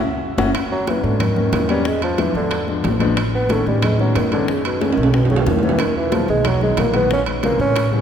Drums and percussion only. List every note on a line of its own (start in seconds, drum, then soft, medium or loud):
0.38 high bongo loud
0.38 high conga loud
0.38 high timbale loud
0.54 high bongo medium
0.54 high conga soft
0.54 high timbale medium
0.71 high conga soft
0.87 high bongo medium
0.87 high conga medium
0.87 high timbale medium
0.87 low timbale medium
1.04 high bongo soft
1.04 high conga soft
1.20 high bongo medium
1.20 high conga soft
1.20 low conga medium
1.20 high timbale medium
1.36 high bongo soft
1.36 high conga soft
1.36 low conga medium
1.53 high bongo soft
1.53 low bongo medium
1.53 high conga medium
1.53 high timbale medium
1.53 low timbale medium
1.69 high bongo soft
1.69 high timbale medium
1.85 high bongo medium
1.85 high conga soft
2.02 high conga soft
2.02 high timbale medium
2.18 high bongo medium
2.18 high conga medium
2.18 high timbale medium
2.18 low timbale medium
2.35 high bongo soft
2.35 high conga soft
2.51 high bongo medium
2.51 high conga soft
2.51 high timbale medium
2.68 high bongo soft
2.68 high conga soft
2.84 high bongo soft
2.84 low bongo medium
2.84 high conga medium
2.84 high timbale medium
2.84 low timbale medium
3.00 high bongo soft
3.00 high conga medium
3.00 high timbale medium
3.17 high bongo medium
3.17 high timbale loud
3.33 high conga soft
3.49 high bongo medium
3.49 high conga medium
3.49 high timbale medium
3.49 low timbale medium
3.67 high bongo soft
3.67 high conga soft
3.82 high bongo medium
3.82 high conga soft
3.82 low conga medium
3.82 high timbale loud
3.99 high bongo soft
3.99 high conga soft
4.15 high bongo soft
4.15 low bongo medium
4.15 high conga medium
4.15 high timbale medium
4.15 low timbale medium
4.32 high bongo soft
4.32 high timbale medium
4.48 high bongo medium
4.48 high conga soft
4.64 high conga soft
4.64 high timbale loud
4.81 high bongo medium
4.81 high conga medium
4.81 high timbale medium
4.93 high timbale medium
4.97 high bongo soft
4.97 high conga soft
5.03 high timbale loud
5.13 high bongo medium
5.13 high conga soft
5.13 high timbale medium
5.25 low timbale medium
5.30 high bongo soft
5.30 high conga soft
5.36 low timbale loud
5.46 high bongo soft
5.46 low bongo medium
5.46 high conga medium
5.46 low timbale medium
5.59 low timbale medium
5.63 high bongo soft
5.63 high conga medium
5.69 low timbale loud
5.79 high bongo medium
5.79 high conga soft
5.79 high timbale loud
5.96 high conga soft
6.12 high bongo medium
6.12 high conga loud
6.12 high timbale medium
6.12 low timbale medium
6.28 high bongo soft
6.28 high conga soft
6.45 high bongo medium
6.45 high conga soft
6.45 low conga medium
6.45 high timbale loud
6.61 high bongo soft
6.61 high conga soft
6.77 high bongo soft
6.77 low bongo loud
6.77 high conga medium
6.77 high timbale loud
6.77 low timbale medium
6.94 high bongo soft
6.94 high timbale medium
7.11 high bongo medium
7.11 high conga soft
7.26 high conga soft
7.26 high timbale loud
7.43 high bongo medium
7.43 high conga medium
7.43 high timbale medium
7.43 low timbale medium
7.60 high bongo soft
7.60 high conga soft
7.76 high bongo medium
7.76 high conga soft
7.76 high timbale medium
7.93 high bongo soft
7.93 high conga soft